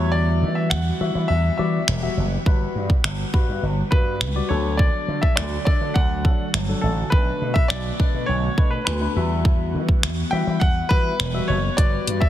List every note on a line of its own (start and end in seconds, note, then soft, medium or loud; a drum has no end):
0.00 0.44 E2 medium
0.00 2.43 E3 medium
0.00 0.77 G3 medium
0.00 4.46 G3 medium
0.00 2.42 B3 medium
0.00 0.77 F#4 medium
0.00 4.46 F#4 medium
0.00 0.13 C#5 medium
0.00 0.77 E5 medium
0.12 0.57 D5 loud
0.42 0.73 E3 loud
0.55 0.71 E5 medium
0.70 0.90 E2 loud
0.70 1.31 F#5 loud
0.70 finger snap loud
1.00 1.10 E3 medium
1.00 1.30 G3 medium
1.00 1.31 F#4 medium
1.00 1.31 E5 medium
1.15 1.25 E3 loud
1.28 1.49 E2 loud
1.28 1.56 E5 medium
1.57 1.78 E3 medium
1.57 1.81 G3 medium
1.57 1.81 F#4 medium
1.57 1.81 D5 medium
1.57 2.12 E5 medium
1.88 2.07 E1 medium
1.88 finger snap loud
2.03 2.25 G3 medium
2.03 2.25 F#4 medium
2.03 2.25 E5 medium
2.17 2.36 F#1 medium
2.46 2.65 G1 loud
2.46 9.12 D3 medium
2.46 2.91 G3 medium
2.46 4.48 B3 medium
2.46 2.91 F#4 medium
2.46 2.91 B4 medium
2.46 kick loud
2.75 2.94 G2 loud
2.90 kick medium
3.04 3.23 G1 loud
3.04 finger snap loud
3.34 3.43 G2 loud
3.34 3.64 G3 medium
3.34 3.64 F#4 medium
3.34 3.64 B4 loud
3.34 kick medium
3.48 3.58 G2 medium
3.63 3.82 G1 loud
3.91 4.22 G2 medium
3.91 4.14 G3 medium
3.91 4.14 F#4 medium
3.91 4.45 B4 medium
3.91 4.14 B4 medium
3.91 kick medium
4.21 4.40 C#2 medium
4.21 finger snap loud
4.35 4.50 G3 medium
4.35 4.50 F#4 medium
4.35 4.50 D5 medium
4.49 4.88 D2 loud
4.49 7.09 F#3 medium
4.49 5.43 F#3 medium
4.49 9.12 A3 medium
4.49 5.43 D4 medium
4.49 11.74 F#4 medium
4.49 5.43 A4 medium
4.49 4.79 C#5 medium
4.77 5.23 D5 medium
4.77 kick loud
5.08 5.27 D3 loud
5.22 5.37 E5 medium
5.22 kick medium
5.36 5.56 D2 medium
5.36 5.64 D5 medium
5.36 finger snap loud
5.65 5.76 D3 medium
5.65 5.96 F#3 medium
5.65 5.96 D4 medium
5.65 5.97 A4 medium
5.65 5.96 D5 medium
5.65 kick medium
5.81 5.91 D3 loud
5.94 6.26 D2 loud
5.94 6.49 F#5 medium
5.94 kick medium
6.25 6.44 D3 medium
6.25 6.47 F#3 medium
6.25 6.47 D4 medium
6.25 6.47 A4 medium
6.25 kick medium
6.54 6.73 G1 medium
6.54 finger snap loud
6.68 6.91 F#3 medium
6.68 6.91 D4 medium
6.68 6.91 A4 medium
6.81 7.02 A1 medium
6.81 7.09 A4 medium
7.10 7.31 B1 loud
7.10 7.57 A3 medium
7.10 12.29 B3 medium
7.10 7.57 D4 medium
7.10 7.52 B4 loud
7.10 7.58 B4 medium
7.10 kick loud
7.41 7.60 B2 loud
7.54 7.70 E5 loud
7.54 kick medium
7.68 7.89 B1 medium
7.68 8.29 D5 medium
7.68 finger snap loud
8.00 8.09 B2 loud
8.00 8.30 A3 medium
8.00 8.30 D4 medium
8.00 8.30 B4 medium
8.00 kick medium
8.14 8.24 B2 medium
8.26 8.48 B1 loud
8.26 8.68 C#5 medium
8.58 8.77 B2 medium
8.58 8.80 A3 medium
8.58 8.80 D4 medium
8.58 8.80 B4 medium
8.58 kick medium
8.71 8.83 B4 medium
8.85 9.06 D2 medium
8.85 9.26 B4 medium
8.85 finger snap loud
9.01 9.16 A3 medium
9.01 9.16 D4 medium
9.01 9.16 B4 medium
9.15 9.76 E2 loud
9.15 11.75 E3 medium
9.15 12.29 G3 medium
9.15 10.09 G3 medium
9.15 10.09 F#4 medium
9.15 10.10 E5 medium
9.45 kick loud
9.74 10.05 E3 loud
9.89 kick medium
10.03 10.22 E2 medium
10.03 finger snap loud
10.31 10.42 E3 medium
10.31 10.62 G3 medium
10.31 10.62 F#4 medium
10.31 10.63 E5 medium
10.31 10.62 G5 loud
10.47 10.57 E3 loud
10.60 10.80 E2 loud
10.60 10.91 F#5 loud
10.60 kick medium
10.89 11.10 E3 medium
10.89 11.13 G3 medium
10.89 11.13 F#4 medium
10.89 11.50 B4 loud
10.89 11.13 E5 medium
10.89 kick medium
11.20 11.39 E1 medium
11.20 finger snap loud
11.34 11.57 G3 medium
11.34 11.57 F#4 medium
11.34 11.57 E5 medium
11.48 11.68 F#1 medium
11.48 11.78 C#5 medium
11.77 11.97 G1 loud
11.77 12.29 D3 medium
11.77 12.23 G3 medium
11.77 12.29 F#4 medium
11.77 12.23 F#4 medium
11.77 12.23 B4 medium
11.77 12.23 D5 loud
11.77 kick loud
11.77 closed hi-hat medium
11.77 swell medium
12.07 12.26 G2 loud
12.07 closed hi-hat medium
12.21 12.29 E5 medium
12.21 kick medium